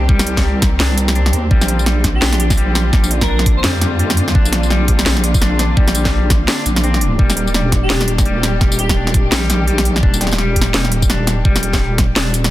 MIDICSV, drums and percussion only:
0, 0, Header, 1, 2, 480
1, 0, Start_track
1, 0, Tempo, 355030
1, 120, Time_signature, 4, 2, 24, 8
1, 16907, End_track
2, 0, Start_track
2, 0, Title_t, "Drums"
2, 120, Note_on_c, 9, 36, 117
2, 255, Note_off_c, 9, 36, 0
2, 262, Note_on_c, 9, 40, 87
2, 262, Note_on_c, 9, 54, 70
2, 359, Note_on_c, 9, 42, 79
2, 397, Note_off_c, 9, 40, 0
2, 397, Note_off_c, 9, 54, 0
2, 495, Note_off_c, 9, 42, 0
2, 504, Note_on_c, 9, 36, 61
2, 504, Note_on_c, 9, 38, 37
2, 504, Note_on_c, 9, 40, 55
2, 504, Note_on_c, 9, 54, 37
2, 639, Note_off_c, 9, 36, 0
2, 640, Note_off_c, 9, 38, 0
2, 640, Note_off_c, 9, 40, 0
2, 640, Note_off_c, 9, 54, 0
2, 839, Note_on_c, 9, 40, 83
2, 839, Note_on_c, 9, 42, 67
2, 841, Note_on_c, 9, 36, 104
2, 975, Note_off_c, 9, 40, 0
2, 975, Note_off_c, 9, 42, 0
2, 976, Note_off_c, 9, 36, 0
2, 1079, Note_on_c, 9, 38, 118
2, 1079, Note_on_c, 9, 40, 57
2, 1214, Note_off_c, 9, 38, 0
2, 1214, Note_off_c, 9, 40, 0
2, 1318, Note_on_c, 9, 42, 82
2, 1318, Note_on_c, 9, 54, 37
2, 1454, Note_off_c, 9, 42, 0
2, 1454, Note_off_c, 9, 54, 0
2, 1462, Note_on_c, 9, 40, 85
2, 1559, Note_on_c, 9, 42, 39
2, 1597, Note_off_c, 9, 40, 0
2, 1695, Note_off_c, 9, 42, 0
2, 1703, Note_on_c, 9, 40, 55
2, 1800, Note_on_c, 9, 42, 67
2, 1838, Note_off_c, 9, 40, 0
2, 1935, Note_off_c, 9, 42, 0
2, 2041, Note_on_c, 9, 36, 114
2, 2176, Note_off_c, 9, 36, 0
2, 2183, Note_on_c, 9, 40, 56
2, 2183, Note_on_c, 9, 54, 67
2, 2277, Note_on_c, 9, 42, 79
2, 2318, Note_off_c, 9, 40, 0
2, 2318, Note_off_c, 9, 54, 0
2, 2412, Note_off_c, 9, 42, 0
2, 2423, Note_on_c, 9, 54, 37
2, 2519, Note_on_c, 9, 40, 84
2, 2558, Note_off_c, 9, 54, 0
2, 2654, Note_off_c, 9, 40, 0
2, 2760, Note_on_c, 9, 40, 56
2, 2760, Note_on_c, 9, 42, 71
2, 2761, Note_on_c, 9, 36, 62
2, 2895, Note_off_c, 9, 40, 0
2, 2895, Note_off_c, 9, 42, 0
2, 2896, Note_off_c, 9, 36, 0
2, 2998, Note_on_c, 9, 38, 122
2, 3133, Note_off_c, 9, 38, 0
2, 3144, Note_on_c, 9, 40, 85
2, 3241, Note_on_c, 9, 42, 80
2, 3279, Note_off_c, 9, 40, 0
2, 3376, Note_off_c, 9, 42, 0
2, 3384, Note_on_c, 9, 36, 106
2, 3385, Note_on_c, 9, 40, 56
2, 3385, Note_on_c, 9, 54, 65
2, 3480, Note_on_c, 9, 42, 40
2, 3519, Note_off_c, 9, 36, 0
2, 3520, Note_off_c, 9, 40, 0
2, 3520, Note_off_c, 9, 54, 0
2, 3616, Note_off_c, 9, 42, 0
2, 3722, Note_on_c, 9, 40, 84
2, 3722, Note_on_c, 9, 54, 38
2, 3857, Note_off_c, 9, 40, 0
2, 3857, Note_off_c, 9, 54, 0
2, 3960, Note_on_c, 9, 36, 120
2, 3962, Note_on_c, 9, 40, 53
2, 4096, Note_off_c, 9, 36, 0
2, 4097, Note_off_c, 9, 40, 0
2, 4105, Note_on_c, 9, 54, 65
2, 4202, Note_on_c, 9, 42, 81
2, 4241, Note_off_c, 9, 54, 0
2, 4337, Note_off_c, 9, 42, 0
2, 4344, Note_on_c, 9, 36, 65
2, 4346, Note_on_c, 9, 40, 78
2, 4480, Note_off_c, 9, 36, 0
2, 4481, Note_off_c, 9, 40, 0
2, 4585, Note_on_c, 9, 40, 56
2, 4680, Note_on_c, 9, 36, 110
2, 4680, Note_on_c, 9, 42, 70
2, 4721, Note_off_c, 9, 40, 0
2, 4815, Note_off_c, 9, 42, 0
2, 4816, Note_off_c, 9, 36, 0
2, 4918, Note_on_c, 9, 38, 122
2, 4918, Note_on_c, 9, 40, 81
2, 5053, Note_off_c, 9, 38, 0
2, 5053, Note_off_c, 9, 40, 0
2, 5157, Note_on_c, 9, 40, 52
2, 5157, Note_on_c, 9, 42, 82
2, 5157, Note_on_c, 9, 54, 35
2, 5293, Note_off_c, 9, 40, 0
2, 5293, Note_off_c, 9, 42, 0
2, 5293, Note_off_c, 9, 54, 0
2, 5399, Note_on_c, 9, 42, 40
2, 5534, Note_off_c, 9, 42, 0
2, 5543, Note_on_c, 9, 40, 78
2, 5639, Note_on_c, 9, 42, 67
2, 5678, Note_off_c, 9, 40, 0
2, 5774, Note_off_c, 9, 42, 0
2, 5784, Note_on_c, 9, 40, 54
2, 5881, Note_on_c, 9, 36, 127
2, 5919, Note_off_c, 9, 40, 0
2, 6016, Note_off_c, 9, 36, 0
2, 6021, Note_on_c, 9, 54, 66
2, 6118, Note_on_c, 9, 40, 77
2, 6118, Note_on_c, 9, 42, 82
2, 6157, Note_off_c, 9, 54, 0
2, 6253, Note_off_c, 9, 40, 0
2, 6253, Note_off_c, 9, 42, 0
2, 6263, Note_on_c, 9, 54, 35
2, 6360, Note_on_c, 9, 40, 53
2, 6399, Note_off_c, 9, 54, 0
2, 6495, Note_off_c, 9, 40, 0
2, 6599, Note_on_c, 9, 42, 68
2, 6601, Note_on_c, 9, 36, 67
2, 6735, Note_off_c, 9, 42, 0
2, 6736, Note_off_c, 9, 36, 0
2, 6744, Note_on_c, 9, 40, 76
2, 6839, Note_on_c, 9, 38, 125
2, 6880, Note_off_c, 9, 40, 0
2, 6974, Note_off_c, 9, 38, 0
2, 6985, Note_on_c, 9, 40, 50
2, 7080, Note_on_c, 9, 42, 79
2, 7120, Note_off_c, 9, 40, 0
2, 7215, Note_off_c, 9, 42, 0
2, 7225, Note_on_c, 9, 36, 109
2, 7226, Note_on_c, 9, 54, 64
2, 7322, Note_on_c, 9, 40, 78
2, 7322, Note_on_c, 9, 42, 39
2, 7360, Note_off_c, 9, 36, 0
2, 7361, Note_off_c, 9, 54, 0
2, 7457, Note_off_c, 9, 40, 0
2, 7457, Note_off_c, 9, 42, 0
2, 7561, Note_on_c, 9, 40, 50
2, 7561, Note_on_c, 9, 42, 67
2, 7561, Note_on_c, 9, 54, 36
2, 7696, Note_off_c, 9, 40, 0
2, 7696, Note_off_c, 9, 42, 0
2, 7696, Note_off_c, 9, 54, 0
2, 7801, Note_on_c, 9, 36, 121
2, 7937, Note_off_c, 9, 36, 0
2, 7944, Note_on_c, 9, 40, 79
2, 8040, Note_on_c, 9, 42, 78
2, 8040, Note_on_c, 9, 54, 64
2, 8079, Note_off_c, 9, 40, 0
2, 8175, Note_off_c, 9, 42, 0
2, 8175, Note_off_c, 9, 54, 0
2, 8182, Note_on_c, 9, 38, 37
2, 8182, Note_on_c, 9, 40, 50
2, 8185, Note_on_c, 9, 36, 66
2, 8317, Note_off_c, 9, 38, 0
2, 8317, Note_off_c, 9, 40, 0
2, 8320, Note_off_c, 9, 36, 0
2, 8520, Note_on_c, 9, 40, 76
2, 8520, Note_on_c, 9, 42, 66
2, 8522, Note_on_c, 9, 36, 109
2, 8655, Note_off_c, 9, 40, 0
2, 8655, Note_off_c, 9, 42, 0
2, 8657, Note_off_c, 9, 36, 0
2, 8761, Note_on_c, 9, 38, 127
2, 8761, Note_on_c, 9, 40, 52
2, 8896, Note_off_c, 9, 38, 0
2, 8896, Note_off_c, 9, 40, 0
2, 9002, Note_on_c, 9, 42, 77
2, 9002, Note_on_c, 9, 54, 34
2, 9138, Note_off_c, 9, 42, 0
2, 9138, Note_off_c, 9, 54, 0
2, 9145, Note_on_c, 9, 40, 77
2, 9241, Note_on_c, 9, 42, 37
2, 9280, Note_off_c, 9, 40, 0
2, 9377, Note_off_c, 9, 42, 0
2, 9384, Note_on_c, 9, 40, 51
2, 9481, Note_on_c, 9, 42, 66
2, 9520, Note_off_c, 9, 40, 0
2, 9616, Note_off_c, 9, 42, 0
2, 9722, Note_on_c, 9, 36, 118
2, 9857, Note_off_c, 9, 36, 0
2, 9864, Note_on_c, 9, 40, 54
2, 9864, Note_on_c, 9, 54, 69
2, 9961, Note_on_c, 9, 42, 75
2, 9999, Note_off_c, 9, 40, 0
2, 9999, Note_off_c, 9, 54, 0
2, 10096, Note_off_c, 9, 42, 0
2, 10105, Note_on_c, 9, 54, 36
2, 10200, Note_on_c, 9, 40, 79
2, 10240, Note_off_c, 9, 54, 0
2, 10335, Note_off_c, 9, 40, 0
2, 10441, Note_on_c, 9, 36, 62
2, 10441, Note_on_c, 9, 40, 52
2, 10441, Note_on_c, 9, 42, 63
2, 10576, Note_off_c, 9, 40, 0
2, 10576, Note_off_c, 9, 42, 0
2, 10577, Note_off_c, 9, 36, 0
2, 10679, Note_on_c, 9, 38, 124
2, 10814, Note_off_c, 9, 38, 0
2, 10824, Note_on_c, 9, 40, 77
2, 10921, Note_on_c, 9, 42, 74
2, 10959, Note_off_c, 9, 40, 0
2, 11056, Note_off_c, 9, 42, 0
2, 11065, Note_on_c, 9, 36, 104
2, 11065, Note_on_c, 9, 40, 53
2, 11065, Note_on_c, 9, 54, 67
2, 11160, Note_on_c, 9, 42, 37
2, 11200, Note_off_c, 9, 36, 0
2, 11200, Note_off_c, 9, 40, 0
2, 11200, Note_off_c, 9, 54, 0
2, 11295, Note_off_c, 9, 42, 0
2, 11402, Note_on_c, 9, 40, 80
2, 11402, Note_on_c, 9, 42, 64
2, 11402, Note_on_c, 9, 54, 37
2, 11537, Note_off_c, 9, 40, 0
2, 11537, Note_off_c, 9, 42, 0
2, 11537, Note_off_c, 9, 54, 0
2, 11641, Note_on_c, 9, 36, 115
2, 11641, Note_on_c, 9, 40, 53
2, 11776, Note_off_c, 9, 36, 0
2, 11777, Note_off_c, 9, 40, 0
2, 11786, Note_on_c, 9, 54, 68
2, 11881, Note_on_c, 9, 42, 75
2, 11921, Note_off_c, 9, 54, 0
2, 12016, Note_off_c, 9, 42, 0
2, 12024, Note_on_c, 9, 36, 59
2, 12025, Note_on_c, 9, 40, 80
2, 12159, Note_off_c, 9, 36, 0
2, 12160, Note_off_c, 9, 40, 0
2, 12264, Note_on_c, 9, 40, 51
2, 12360, Note_on_c, 9, 42, 64
2, 12361, Note_on_c, 9, 36, 103
2, 12399, Note_off_c, 9, 40, 0
2, 12495, Note_off_c, 9, 42, 0
2, 12496, Note_off_c, 9, 36, 0
2, 12598, Note_on_c, 9, 38, 113
2, 12598, Note_on_c, 9, 40, 80
2, 12733, Note_off_c, 9, 38, 0
2, 12733, Note_off_c, 9, 40, 0
2, 12840, Note_on_c, 9, 40, 53
2, 12840, Note_on_c, 9, 42, 77
2, 12840, Note_on_c, 9, 54, 38
2, 12975, Note_off_c, 9, 40, 0
2, 12975, Note_off_c, 9, 42, 0
2, 12975, Note_off_c, 9, 54, 0
2, 13080, Note_on_c, 9, 42, 36
2, 13216, Note_off_c, 9, 42, 0
2, 13225, Note_on_c, 9, 40, 81
2, 13321, Note_on_c, 9, 42, 64
2, 13360, Note_off_c, 9, 40, 0
2, 13456, Note_off_c, 9, 42, 0
2, 13465, Note_on_c, 9, 40, 54
2, 13560, Note_on_c, 9, 36, 114
2, 13600, Note_off_c, 9, 40, 0
2, 13696, Note_off_c, 9, 36, 0
2, 13705, Note_on_c, 9, 54, 74
2, 13803, Note_on_c, 9, 40, 37
2, 13803, Note_on_c, 9, 42, 75
2, 13840, Note_off_c, 9, 54, 0
2, 13883, Note_off_c, 9, 40, 0
2, 13883, Note_on_c, 9, 40, 50
2, 13938, Note_off_c, 9, 42, 0
2, 13945, Note_on_c, 9, 54, 38
2, 13960, Note_off_c, 9, 40, 0
2, 13960, Note_on_c, 9, 40, 62
2, 14039, Note_off_c, 9, 40, 0
2, 14039, Note_on_c, 9, 40, 55
2, 14080, Note_off_c, 9, 54, 0
2, 14175, Note_off_c, 9, 40, 0
2, 14279, Note_on_c, 9, 42, 67
2, 14280, Note_on_c, 9, 36, 60
2, 14351, Note_on_c, 9, 40, 84
2, 14414, Note_off_c, 9, 42, 0
2, 14415, Note_off_c, 9, 36, 0
2, 14487, Note_off_c, 9, 40, 0
2, 14520, Note_on_c, 9, 38, 116
2, 14656, Note_off_c, 9, 38, 0
2, 14664, Note_on_c, 9, 40, 54
2, 14759, Note_on_c, 9, 42, 75
2, 14799, Note_off_c, 9, 40, 0
2, 14894, Note_off_c, 9, 42, 0
2, 14904, Note_on_c, 9, 36, 96
2, 14905, Note_on_c, 9, 54, 73
2, 15003, Note_on_c, 9, 40, 86
2, 15003, Note_on_c, 9, 42, 38
2, 15039, Note_off_c, 9, 36, 0
2, 15040, Note_off_c, 9, 54, 0
2, 15138, Note_off_c, 9, 40, 0
2, 15138, Note_off_c, 9, 42, 0
2, 15240, Note_on_c, 9, 40, 55
2, 15240, Note_on_c, 9, 42, 65
2, 15240, Note_on_c, 9, 54, 39
2, 15375, Note_off_c, 9, 40, 0
2, 15375, Note_off_c, 9, 42, 0
2, 15375, Note_off_c, 9, 54, 0
2, 15481, Note_on_c, 9, 36, 114
2, 15616, Note_off_c, 9, 36, 0
2, 15624, Note_on_c, 9, 40, 83
2, 15624, Note_on_c, 9, 54, 72
2, 15722, Note_on_c, 9, 42, 80
2, 15760, Note_off_c, 9, 40, 0
2, 15760, Note_off_c, 9, 54, 0
2, 15857, Note_off_c, 9, 42, 0
2, 15864, Note_on_c, 9, 36, 60
2, 15865, Note_on_c, 9, 38, 35
2, 15865, Note_on_c, 9, 40, 52
2, 15865, Note_on_c, 9, 54, 37
2, 16000, Note_off_c, 9, 36, 0
2, 16000, Note_off_c, 9, 38, 0
2, 16000, Note_off_c, 9, 40, 0
2, 16000, Note_off_c, 9, 54, 0
2, 16201, Note_on_c, 9, 36, 103
2, 16201, Note_on_c, 9, 40, 87
2, 16201, Note_on_c, 9, 42, 68
2, 16336, Note_off_c, 9, 36, 0
2, 16336, Note_off_c, 9, 40, 0
2, 16336, Note_off_c, 9, 42, 0
2, 16441, Note_on_c, 9, 38, 121
2, 16441, Note_on_c, 9, 40, 56
2, 16577, Note_off_c, 9, 38, 0
2, 16577, Note_off_c, 9, 40, 0
2, 16681, Note_on_c, 9, 42, 77
2, 16681, Note_on_c, 9, 54, 38
2, 16817, Note_off_c, 9, 42, 0
2, 16817, Note_off_c, 9, 54, 0
2, 16824, Note_on_c, 9, 40, 84
2, 16907, Note_off_c, 9, 40, 0
2, 16907, End_track
0, 0, End_of_file